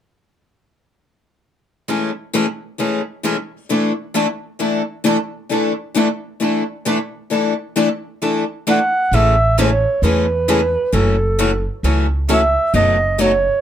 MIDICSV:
0, 0, Header, 1, 5, 480
1, 0, Start_track
1, 0, Key_signature, 3, "major"
1, 0, Tempo, 452489
1, 1993, Time_signature, 4, 2, 24, 8
1, 14437, End_track
2, 0, Start_track
2, 0, Title_t, "Clarinet"
2, 0, Program_c, 0, 71
2, 9225, Note_on_c, 0, 78, 88
2, 9703, Note_on_c, 0, 76, 97
2, 9719, Note_off_c, 0, 78, 0
2, 10169, Note_off_c, 0, 76, 0
2, 10174, Note_on_c, 0, 73, 75
2, 10611, Note_off_c, 0, 73, 0
2, 10644, Note_on_c, 0, 71, 88
2, 11602, Note_on_c, 0, 69, 74
2, 11618, Note_off_c, 0, 71, 0
2, 12383, Note_off_c, 0, 69, 0
2, 13046, Note_on_c, 0, 76, 85
2, 13487, Note_off_c, 0, 76, 0
2, 13528, Note_on_c, 0, 75, 97
2, 14012, Note_on_c, 0, 73, 83
2, 14028, Note_off_c, 0, 75, 0
2, 14437, Note_off_c, 0, 73, 0
2, 14437, End_track
3, 0, Start_track
3, 0, Title_t, "Steel-string acoustic guitar"
3, 0, Program_c, 1, 25
3, 1997, Note_on_c, 1, 56, 58
3, 2005, Note_on_c, 1, 69, 57
3, 2006, Note_on_c, 1, 64, 61
3, 2225, Note_off_c, 1, 56, 0
3, 2229, Note_off_c, 1, 64, 0
3, 2229, Note_off_c, 1, 69, 0
3, 2491, Note_on_c, 1, 56, 62
3, 2496, Note_on_c, 1, 64, 75
3, 2501, Note_on_c, 1, 69, 77
3, 2604, Note_off_c, 1, 56, 0
3, 2606, Note_off_c, 1, 64, 0
3, 2609, Note_off_c, 1, 69, 0
3, 2967, Note_on_c, 1, 56, 56
3, 2972, Note_on_c, 1, 64, 53
3, 2974, Note_on_c, 1, 69, 57
3, 3190, Note_off_c, 1, 56, 0
3, 3192, Note_off_c, 1, 64, 0
3, 3193, Note_off_c, 1, 69, 0
3, 3443, Note_on_c, 1, 56, 75
3, 3449, Note_on_c, 1, 69, 84
3, 3452, Note_on_c, 1, 64, 73
3, 3560, Note_off_c, 1, 56, 0
3, 3563, Note_off_c, 1, 69, 0
3, 3564, Note_off_c, 1, 64, 0
3, 9689, Note_on_c, 1, 56, 50
3, 9690, Note_on_c, 1, 64, 56
3, 9696, Note_on_c, 1, 69, 61
3, 9911, Note_off_c, 1, 56, 0
3, 9912, Note_off_c, 1, 64, 0
3, 9915, Note_off_c, 1, 69, 0
3, 10160, Note_on_c, 1, 56, 70
3, 10163, Note_on_c, 1, 64, 83
3, 10170, Note_on_c, 1, 69, 81
3, 10279, Note_off_c, 1, 56, 0
3, 10281, Note_off_c, 1, 64, 0
3, 10284, Note_off_c, 1, 69, 0
3, 10639, Note_on_c, 1, 56, 56
3, 10646, Note_on_c, 1, 64, 62
3, 10648, Note_on_c, 1, 69, 64
3, 10867, Note_off_c, 1, 56, 0
3, 10870, Note_off_c, 1, 64, 0
3, 10871, Note_off_c, 1, 69, 0
3, 11118, Note_on_c, 1, 56, 75
3, 11124, Note_on_c, 1, 64, 84
3, 11127, Note_on_c, 1, 69, 82
3, 11238, Note_off_c, 1, 56, 0
3, 11241, Note_off_c, 1, 64, 0
3, 11242, Note_off_c, 1, 69, 0
3, 11599, Note_on_c, 1, 54, 59
3, 11602, Note_on_c, 1, 64, 56
3, 11605, Note_on_c, 1, 69, 58
3, 11826, Note_off_c, 1, 54, 0
3, 11828, Note_off_c, 1, 64, 0
3, 11830, Note_off_c, 1, 69, 0
3, 12078, Note_on_c, 1, 54, 82
3, 12081, Note_on_c, 1, 64, 79
3, 12089, Note_on_c, 1, 69, 72
3, 12198, Note_off_c, 1, 54, 0
3, 12199, Note_off_c, 1, 64, 0
3, 12203, Note_off_c, 1, 69, 0
3, 12563, Note_on_c, 1, 54, 54
3, 12567, Note_on_c, 1, 64, 59
3, 12571, Note_on_c, 1, 69, 51
3, 12788, Note_off_c, 1, 54, 0
3, 12790, Note_off_c, 1, 64, 0
3, 12792, Note_off_c, 1, 69, 0
3, 13032, Note_on_c, 1, 54, 73
3, 13040, Note_on_c, 1, 64, 87
3, 13041, Note_on_c, 1, 69, 91
3, 13155, Note_off_c, 1, 54, 0
3, 13159, Note_off_c, 1, 64, 0
3, 13159, Note_off_c, 1, 69, 0
3, 13524, Note_on_c, 1, 59, 61
3, 13534, Note_on_c, 1, 69, 61
3, 13748, Note_off_c, 1, 59, 0
3, 13753, Note_off_c, 1, 69, 0
3, 14008, Note_on_c, 1, 59, 72
3, 14017, Note_on_c, 1, 69, 83
3, 14122, Note_off_c, 1, 59, 0
3, 14127, Note_off_c, 1, 69, 0
3, 14437, End_track
4, 0, Start_track
4, 0, Title_t, "Steel-string acoustic guitar"
4, 0, Program_c, 2, 25
4, 1997, Note_on_c, 2, 52, 54
4, 2001, Note_on_c, 2, 57, 53
4, 2009, Note_on_c, 2, 61, 53
4, 2016, Note_on_c, 2, 68, 66
4, 2225, Note_off_c, 2, 52, 0
4, 2227, Note_off_c, 2, 57, 0
4, 2231, Note_off_c, 2, 61, 0
4, 2234, Note_off_c, 2, 68, 0
4, 2477, Note_on_c, 2, 52, 79
4, 2481, Note_on_c, 2, 57, 79
4, 2490, Note_on_c, 2, 68, 83
4, 2491, Note_on_c, 2, 61, 80
4, 2597, Note_off_c, 2, 52, 0
4, 2599, Note_off_c, 2, 57, 0
4, 2603, Note_off_c, 2, 68, 0
4, 2604, Note_off_c, 2, 61, 0
4, 2952, Note_on_c, 2, 52, 54
4, 2958, Note_on_c, 2, 57, 59
4, 2967, Note_on_c, 2, 61, 62
4, 2968, Note_on_c, 2, 68, 62
4, 3182, Note_off_c, 2, 52, 0
4, 3185, Note_off_c, 2, 57, 0
4, 3190, Note_off_c, 2, 61, 0
4, 3190, Note_off_c, 2, 68, 0
4, 3430, Note_on_c, 2, 52, 67
4, 3434, Note_on_c, 2, 57, 71
4, 3440, Note_on_c, 2, 61, 70
4, 3445, Note_on_c, 2, 68, 85
4, 3553, Note_off_c, 2, 52, 0
4, 3555, Note_off_c, 2, 57, 0
4, 3558, Note_off_c, 2, 61, 0
4, 3561, Note_off_c, 2, 68, 0
4, 3917, Note_on_c, 2, 52, 54
4, 3922, Note_on_c, 2, 57, 58
4, 3925, Note_on_c, 2, 62, 65
4, 3926, Note_on_c, 2, 64, 65
4, 3926, Note_on_c, 2, 69, 71
4, 4145, Note_off_c, 2, 52, 0
4, 4147, Note_off_c, 2, 57, 0
4, 4149, Note_off_c, 2, 62, 0
4, 4149, Note_off_c, 2, 64, 0
4, 4150, Note_off_c, 2, 69, 0
4, 4394, Note_on_c, 2, 52, 70
4, 4401, Note_on_c, 2, 57, 68
4, 4408, Note_on_c, 2, 62, 81
4, 4411, Note_on_c, 2, 64, 80
4, 4413, Note_on_c, 2, 69, 83
4, 4515, Note_off_c, 2, 52, 0
4, 4519, Note_off_c, 2, 57, 0
4, 4522, Note_off_c, 2, 62, 0
4, 4524, Note_off_c, 2, 64, 0
4, 4525, Note_off_c, 2, 69, 0
4, 4870, Note_on_c, 2, 52, 51
4, 4876, Note_on_c, 2, 57, 57
4, 4880, Note_on_c, 2, 62, 57
4, 4881, Note_on_c, 2, 64, 63
4, 4885, Note_on_c, 2, 69, 61
4, 5101, Note_off_c, 2, 52, 0
4, 5105, Note_off_c, 2, 57, 0
4, 5107, Note_off_c, 2, 62, 0
4, 5107, Note_off_c, 2, 64, 0
4, 5109, Note_off_c, 2, 69, 0
4, 5345, Note_on_c, 2, 57, 81
4, 5346, Note_on_c, 2, 52, 73
4, 5352, Note_on_c, 2, 62, 80
4, 5352, Note_on_c, 2, 64, 79
4, 5355, Note_on_c, 2, 69, 81
4, 5471, Note_off_c, 2, 52, 0
4, 5471, Note_off_c, 2, 57, 0
4, 5474, Note_off_c, 2, 62, 0
4, 5475, Note_off_c, 2, 64, 0
4, 5476, Note_off_c, 2, 69, 0
4, 5828, Note_on_c, 2, 52, 59
4, 5833, Note_on_c, 2, 62, 61
4, 5836, Note_on_c, 2, 57, 50
4, 5841, Note_on_c, 2, 64, 59
4, 5844, Note_on_c, 2, 69, 64
4, 6061, Note_off_c, 2, 52, 0
4, 6063, Note_off_c, 2, 62, 0
4, 6065, Note_off_c, 2, 57, 0
4, 6067, Note_off_c, 2, 64, 0
4, 6069, Note_off_c, 2, 69, 0
4, 6306, Note_on_c, 2, 52, 76
4, 6315, Note_on_c, 2, 62, 80
4, 6316, Note_on_c, 2, 57, 81
4, 6323, Note_on_c, 2, 64, 79
4, 6326, Note_on_c, 2, 69, 86
4, 6432, Note_off_c, 2, 52, 0
4, 6436, Note_off_c, 2, 62, 0
4, 6437, Note_off_c, 2, 57, 0
4, 6440, Note_off_c, 2, 64, 0
4, 6442, Note_off_c, 2, 69, 0
4, 6788, Note_on_c, 2, 52, 65
4, 6790, Note_on_c, 2, 57, 59
4, 6797, Note_on_c, 2, 62, 63
4, 6799, Note_on_c, 2, 64, 64
4, 6803, Note_on_c, 2, 69, 64
4, 7020, Note_off_c, 2, 52, 0
4, 7022, Note_off_c, 2, 57, 0
4, 7025, Note_off_c, 2, 62, 0
4, 7026, Note_off_c, 2, 64, 0
4, 7028, Note_off_c, 2, 69, 0
4, 7270, Note_on_c, 2, 52, 66
4, 7272, Note_on_c, 2, 57, 76
4, 7278, Note_on_c, 2, 62, 75
4, 7281, Note_on_c, 2, 64, 74
4, 7284, Note_on_c, 2, 69, 83
4, 7394, Note_off_c, 2, 52, 0
4, 7394, Note_off_c, 2, 57, 0
4, 7398, Note_off_c, 2, 62, 0
4, 7399, Note_off_c, 2, 64, 0
4, 7401, Note_off_c, 2, 69, 0
4, 7744, Note_on_c, 2, 52, 59
4, 7750, Note_on_c, 2, 57, 50
4, 7753, Note_on_c, 2, 62, 59
4, 7755, Note_on_c, 2, 64, 60
4, 7759, Note_on_c, 2, 69, 61
4, 7979, Note_off_c, 2, 52, 0
4, 7982, Note_off_c, 2, 57, 0
4, 7983, Note_off_c, 2, 62, 0
4, 7985, Note_off_c, 2, 64, 0
4, 7986, Note_off_c, 2, 69, 0
4, 8229, Note_on_c, 2, 52, 72
4, 8231, Note_on_c, 2, 57, 85
4, 8238, Note_on_c, 2, 64, 87
4, 8241, Note_on_c, 2, 62, 79
4, 8244, Note_on_c, 2, 69, 87
4, 8353, Note_off_c, 2, 52, 0
4, 8354, Note_off_c, 2, 57, 0
4, 8358, Note_off_c, 2, 64, 0
4, 8359, Note_off_c, 2, 62, 0
4, 8361, Note_off_c, 2, 69, 0
4, 8716, Note_on_c, 2, 52, 55
4, 8724, Note_on_c, 2, 57, 54
4, 8724, Note_on_c, 2, 62, 60
4, 8728, Note_on_c, 2, 64, 61
4, 8730, Note_on_c, 2, 69, 58
4, 8945, Note_off_c, 2, 52, 0
4, 8949, Note_off_c, 2, 57, 0
4, 8949, Note_off_c, 2, 62, 0
4, 8951, Note_off_c, 2, 64, 0
4, 8952, Note_off_c, 2, 69, 0
4, 9194, Note_on_c, 2, 52, 69
4, 9195, Note_on_c, 2, 57, 76
4, 9200, Note_on_c, 2, 64, 78
4, 9201, Note_on_c, 2, 62, 67
4, 9206, Note_on_c, 2, 69, 82
4, 9316, Note_off_c, 2, 52, 0
4, 9316, Note_off_c, 2, 57, 0
4, 9319, Note_off_c, 2, 62, 0
4, 9319, Note_off_c, 2, 64, 0
4, 9322, Note_off_c, 2, 69, 0
4, 9684, Note_on_c, 2, 49, 57
4, 9685, Note_on_c, 2, 52, 54
4, 9688, Note_on_c, 2, 57, 58
4, 9690, Note_on_c, 2, 61, 58
4, 9696, Note_on_c, 2, 68, 60
4, 9909, Note_off_c, 2, 49, 0
4, 9909, Note_off_c, 2, 52, 0
4, 9911, Note_off_c, 2, 57, 0
4, 9912, Note_off_c, 2, 61, 0
4, 9915, Note_off_c, 2, 68, 0
4, 10165, Note_on_c, 2, 49, 73
4, 10167, Note_on_c, 2, 52, 79
4, 10173, Note_on_c, 2, 61, 85
4, 10174, Note_on_c, 2, 57, 83
4, 10178, Note_on_c, 2, 68, 86
4, 10281, Note_off_c, 2, 49, 0
4, 10283, Note_off_c, 2, 52, 0
4, 10285, Note_off_c, 2, 61, 0
4, 10286, Note_off_c, 2, 57, 0
4, 10288, Note_off_c, 2, 68, 0
4, 10648, Note_on_c, 2, 49, 52
4, 10650, Note_on_c, 2, 52, 58
4, 10656, Note_on_c, 2, 57, 57
4, 10657, Note_on_c, 2, 61, 64
4, 10659, Note_on_c, 2, 68, 61
4, 10871, Note_off_c, 2, 49, 0
4, 10872, Note_off_c, 2, 52, 0
4, 10875, Note_off_c, 2, 57, 0
4, 10875, Note_off_c, 2, 61, 0
4, 10876, Note_off_c, 2, 68, 0
4, 11121, Note_on_c, 2, 49, 70
4, 11124, Note_on_c, 2, 52, 84
4, 11125, Note_on_c, 2, 57, 74
4, 11128, Note_on_c, 2, 61, 81
4, 11135, Note_on_c, 2, 68, 82
4, 11239, Note_off_c, 2, 49, 0
4, 11241, Note_off_c, 2, 52, 0
4, 11241, Note_off_c, 2, 57, 0
4, 11243, Note_off_c, 2, 61, 0
4, 11246, Note_off_c, 2, 68, 0
4, 11589, Note_on_c, 2, 49, 62
4, 11597, Note_on_c, 2, 52, 55
4, 11597, Note_on_c, 2, 57, 62
4, 11603, Note_on_c, 2, 61, 59
4, 11605, Note_on_c, 2, 66, 61
4, 11821, Note_off_c, 2, 49, 0
4, 11825, Note_off_c, 2, 52, 0
4, 11825, Note_off_c, 2, 57, 0
4, 11828, Note_off_c, 2, 61, 0
4, 11829, Note_off_c, 2, 66, 0
4, 12081, Note_on_c, 2, 49, 77
4, 12083, Note_on_c, 2, 52, 81
4, 12087, Note_on_c, 2, 57, 83
4, 12090, Note_on_c, 2, 61, 74
4, 12095, Note_on_c, 2, 66, 85
4, 12199, Note_off_c, 2, 49, 0
4, 12200, Note_off_c, 2, 52, 0
4, 12202, Note_off_c, 2, 57, 0
4, 12203, Note_off_c, 2, 61, 0
4, 12206, Note_off_c, 2, 66, 0
4, 12561, Note_on_c, 2, 49, 56
4, 12563, Note_on_c, 2, 52, 62
4, 12566, Note_on_c, 2, 57, 61
4, 12568, Note_on_c, 2, 66, 64
4, 12570, Note_on_c, 2, 61, 66
4, 12787, Note_off_c, 2, 49, 0
4, 12788, Note_off_c, 2, 52, 0
4, 12789, Note_off_c, 2, 57, 0
4, 12791, Note_off_c, 2, 66, 0
4, 12792, Note_off_c, 2, 61, 0
4, 13037, Note_on_c, 2, 49, 75
4, 13044, Note_on_c, 2, 52, 72
4, 13046, Note_on_c, 2, 57, 74
4, 13046, Note_on_c, 2, 61, 81
4, 13053, Note_on_c, 2, 66, 79
4, 13157, Note_off_c, 2, 49, 0
4, 13160, Note_off_c, 2, 52, 0
4, 13161, Note_off_c, 2, 57, 0
4, 13161, Note_off_c, 2, 61, 0
4, 13165, Note_off_c, 2, 66, 0
4, 13510, Note_on_c, 2, 47, 63
4, 13514, Note_on_c, 2, 63, 61
4, 13515, Note_on_c, 2, 54, 59
4, 13515, Note_on_c, 2, 57, 58
4, 13523, Note_on_c, 2, 66, 58
4, 13741, Note_off_c, 2, 47, 0
4, 13744, Note_off_c, 2, 54, 0
4, 13744, Note_off_c, 2, 57, 0
4, 13744, Note_off_c, 2, 63, 0
4, 13748, Note_off_c, 2, 66, 0
4, 13985, Note_on_c, 2, 47, 68
4, 13988, Note_on_c, 2, 54, 73
4, 13990, Note_on_c, 2, 57, 89
4, 13996, Note_on_c, 2, 63, 81
4, 14002, Note_on_c, 2, 66, 82
4, 14111, Note_off_c, 2, 47, 0
4, 14112, Note_off_c, 2, 54, 0
4, 14113, Note_off_c, 2, 57, 0
4, 14116, Note_off_c, 2, 63, 0
4, 14119, Note_off_c, 2, 66, 0
4, 14437, End_track
5, 0, Start_track
5, 0, Title_t, "Upright bass"
5, 0, Program_c, 3, 32
5, 9669, Note_on_c, 3, 33, 72
5, 10439, Note_off_c, 3, 33, 0
5, 10630, Note_on_c, 3, 40, 68
5, 11400, Note_off_c, 3, 40, 0
5, 11593, Note_on_c, 3, 30, 76
5, 12361, Note_off_c, 3, 30, 0
5, 12552, Note_on_c, 3, 37, 65
5, 13321, Note_off_c, 3, 37, 0
5, 13512, Note_on_c, 3, 30, 78
5, 14280, Note_off_c, 3, 30, 0
5, 14437, End_track
0, 0, End_of_file